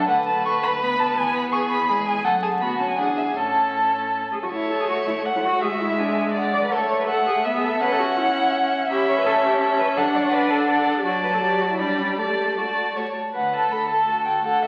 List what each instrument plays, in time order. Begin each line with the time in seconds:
0.08 cello D2, viola A3, violin B4 F#5
0.26 violin A5
0.45 violin C#6
0.63 violin B5
0.81 viola B3, violin B5
0.99 violin A5
1.17 cello E2, violin G#5
1.35 violin B5
1.52 violin G#4 C#6
1.70 violin B5
1.88 viola G#3, violin G#4 B5
2.06 violin G#5
2.25 cello F#2, viola A3, violin A4 F#5
2.42 violin G#4 A5
2.61 cello D2, viola B3, violin F#4 B5
2.79 viola C#4, violin A5
2.89 violin G#5
2.98 cello E2, viola D4, violin G#4 F#5
3.17 violin E5
3.28 violin G#5
3.36 cello A2, viola C#4, violin A4 A5
4.32 cello G#4
4.43 cello F#4
4.51 viola A3, cello E4, violin C#5 E5
4.71 cello A4
4.80 cello G#4
4.89 cello F#4
5.07 cello E4
5.25 violin C#5 F#5
5.36 cello E4
5.44 cello F#4
5.61 viola G#3, cello G#4, violin E5
5.72 cello F#4
5.80 cello E4
5.98 cello D4, violin G#5
6.18 violin G#5
6.34 violin D5 F#5
6.54 cello D5
6.63 cello B4
6.72 viola A3, cello A4, violin C#5 E5
6.90 cello C#5
7.00 cello B4
7.08 cello A4, violin F#5
7.27 cello G#4
7.45 viola B3, violin E5
7.55 cello G#4
7.63 cello A4
7.81 viola C#4, cello B4, violin E5 F#5
7.92 cello A4
7.99 cello F#4
8.18 cello E4
8.90 viola C#4, cello G4, violin E5 B5
9.08 cello C#5
9.18 cello B4
9.25 cello A4, violin A5
9.43 cello G4
9.61 violin E5
9.70 cello G4
9.78 cello B4
9.96 viola D4, cello A4, violin F#5 A5
10.15 cello D5
10.25 cello C#5
10.32 cello B4, violin D5 F#5
10.51 cello A4
10.67 violin D5 F#5
10.79 cello A4
10.87 cello A4
10.96 cello G4
11.04 viola F#3, cello F#4, violin D5 A5
11.23 cello B4
11.34 cello A4
11.42 cello G4
11.61 cello F#4
11.71 cello E4
11.78 viola G3, cello D4, violin D5 B5
11.98 cello C#4
12.09 cello D4
12.18 viola A3, cello G4, violin D5 A5
12.57 cello F#4, violin D5 A5
12.95 viola A3, violin C#5 A5
13.34 cello D2, viola B4, violin F#5
13.53 violin A4 A5
13.70 cello D2, viola A4, violin B5
13.88 violin A4 A5
14.07 cello D2, viola F#4, violin A5
14.25 violin A4 G5
14.44 cello D2, viola A4, violin A4 F#5
14.62 violin E5